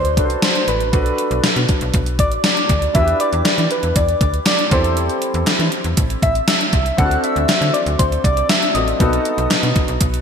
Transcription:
Already playing: fm bass D2, grand piano D4 F#4 A4 C5, soft synth lead C5
0.05 closed hi-hat
0.17 fm bass C2, grand piano D4 F#4 A4 B4, kick, closed hi-hat
0.24 grand piano C5
0.30 closed hi-hat
0.42 soft synth lead C5, snare, closed hi-hat
0.55 closed hi-hat
0.68 fm bass A1, soft synth lead B4, closed hi-hat
0.81 closed hi-hat
0.92 fm bass B1, grand piano D4 F#4 A4 B4, kick, closed hi-hat
1.06 closed hi-hat
1.18 closed hi-hat
1.31 fm bass B1, closed hi-hat
1.44 fm bass B2, snare, closed hi-hat
1.56 fm bass B2, closed hi-hat
1.69 kick, closed hi-hat
1.81 fm bass B1, closed hi-hat
1.94 fm bass B1, kick, closed hi-hat
2.06 closed hi-hat
2.19 fm bass A1, soft synth lead D5, kick, closed hi-hat
2.32 closed hi-hat
2.44 soft synth lead D5, snare, closed hi-hat
2.57 closed hi-hat
2.69 fm bass D2, kick, closed hi-hat
2.82 closed hi-hat
2.93 fm bass E2, grand piano D4 E4 F#4 B4, soft synth lead E5, kick, closed hi-hat
3.01 grand piano G4
3.08 closed hi-hat
3.20 soft synth lead D5, closed hi-hat
3.33 fm bass E2, closed hi-hat
3.45 fm bass E3, soft synth lead D5, snare, clap, closed hi-hat
3.58 fm bass E3, closed hi-hat
3.71 soft synth lead B4, closed hi-hat
3.83 fm bass E2, closed hi-hat
3.96 fm bass E2, soft synth lead D5, kick, closed hi-hat
4.09 closed hi-hat
4.21 fm bass D2, soft synth lead D5, kick, closed hi-hat
4.34 closed hi-hat
4.46 soft synth lead D5, snare, clap, closed hi-hat
4.59 closed hi-hat
4.70 fm bass E2, grand piano C4 E4 G4 A4, soft synth lead C5, kick, closed hi-hat
4.84 closed hi-hat
4.97 closed hi-hat
5.09 closed hi-hat
5.22 closed hi-hat
5.34 fm bass E2, closed hi-hat
5.47 fm bass E3, snare, clap, closed hi-hat
5.59 fm bass E3, closed hi-hat
5.72 closed hi-hat
5.84 fm bass E2, closed hi-hat
5.97 fm bass A1, kick, closed hi-hat
6.10 closed hi-hat
6.22 fm bass A1, soft synth lead E5, kick, closed hi-hat
6.35 closed hi-hat
6.48 soft synth lead E5, snare, clap, closed hi-hat
6.61 closed hi-hat
6.73 fm bass C2, kick, closed hi-hat
6.86 closed hi-hat
6.97 fm bass D2, grand piano C4 D4 E4 A4, soft synth lead F#5, kick, closed hi-hat
7.05 grand piano F#4
7.11 closed hi-hat
7.24 soft synth lead E5, closed hi-hat
7.36 fm bass D2, closed hi-hat
7.49 fm bass D3, snare, clap, closed hi-hat
7.61 fm bass D3, closed hi-hat
7.74 soft synth lead D5, closed hi-hat
7.86 fm bass D2, closed hi-hat
7.99 fm bass D2, soft synth lead C5, kick, closed hi-hat
8.12 closed hi-hat
8.24 fm bass C2, soft synth lead D5, kick, closed hi-hat
8.37 closed hi-hat
8.49 soft synth lead E5, snare, clap, closed hi-hat
8.62 closed hi-hat
8.74 fm bass A1, grand piano C4 D4 F#4 A4, soft synth lead D#5, closed hi-hat
8.88 closed hi-hat
8.99 fm bass B1, grand piano B3 D#4 F#4 A4, kick, closed hi-hat
9.13 closed hi-hat
9.25 closed hi-hat
9.38 fm bass B1, closed hi-hat
9.51 fm bass B2, snare, clap, closed hi-hat
9.63 fm bass B2, closed hi-hat
9.76 kick, closed hi-hat
9.88 fm bass B1, closed hi-hat
10.01 fm bass B1, kick, closed hi-hat
10.14 closed hi-hat

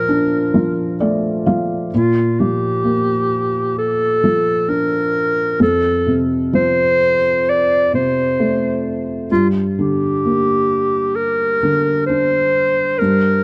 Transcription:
Already playing: felt piano A#2 F3 F4, clarinet A#4
0.09 felt piano D4
0.54 felt piano F3
1.00 felt piano A3 D5
1.46 felt piano F3 F5
1.93 felt piano A#2, clarinet F4
2.40 felt piano F3, clarinet G4
2.84 felt piano A#3
3.78 clarinet A4
4.24 felt piano F3
4.68 felt piano D4, clarinet A#4
5.60 felt piano F2, clarinet A4
6.07 felt piano C3
6.53 felt piano F3, clarinet C5
7.49 clarinet D5
7.93 felt piano C3, clarinet C5
8.40 felt piano A3
9.31 felt piano G2, clarinet F4
9.78 felt piano D3, clarinet G4
10.25 felt piano A#3
11.15 clarinet A#4
11.63 felt piano D3
12.06 felt piano D4, clarinet C5
12.98 felt piano G2, clarinet A#4

